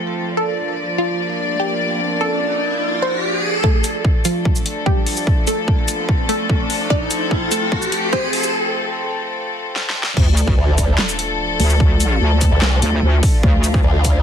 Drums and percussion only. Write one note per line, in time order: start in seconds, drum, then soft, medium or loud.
3.64 kick loud
3.84 closed hi-hat medium
3.84 shaker medium
4.05 kick medium
4.25 closed hi-hat medium
4.25 shaker medium
4.45 kick medium
4.56 shaker medium
4.66 closed hi-hat medium
4.86 kick medium
5.06 open hi-hat medium
5.17 shaker medium
5.27 kick loud
5.47 closed hi-hat medium
5.47 shaker medium
5.68 kick loud
5.88 closed hi-hat medium
5.88 shaker medium
6.09 kick medium
6.29 closed hi-hat medium
6.49 kick medium
6.70 open hi-hat medium
6.90 kick loud
7.11 closed hi-hat medium
7.11 shaker medium
7.31 kick loud
7.52 closed hi-hat medium
7.52 shaker medium
7.72 kick loud
7.82 shaker medium
7.92 closed hi-hat medium
8.13 kick loud
8.33 open hi-hat medium
8.43 shaker medium
9.76 snare medium
9.90 snare medium
10.03 snare loud
10.17 kick loud
10.17 crash loud
10.37 closed hi-hat medium
10.37 shaker medium
10.47 kick loud
10.78 kick medium
10.78 closed hi-hat medium
10.78 shaker medium
10.98 snare loud
10.98 clap medium
11.09 shaker medium
11.19 closed hi-hat medium
11.60 open hi-hat medium
11.70 shaker medium
11.80 kick loud
12.00 closed hi-hat medium
12.00 shaker medium
12.41 kick medium
12.41 closed hi-hat medium
12.41 shaker medium
12.62 snare loud
12.62 clap loud
12.82 closed hi-hat medium
13.23 kick loud
13.23 open hi-hat medium
13.43 kick loud
13.64 closed hi-hat medium
13.64 shaker medium
13.74 kick loud
14.05 kick medium
14.05 closed hi-hat medium
14.05 shaker medium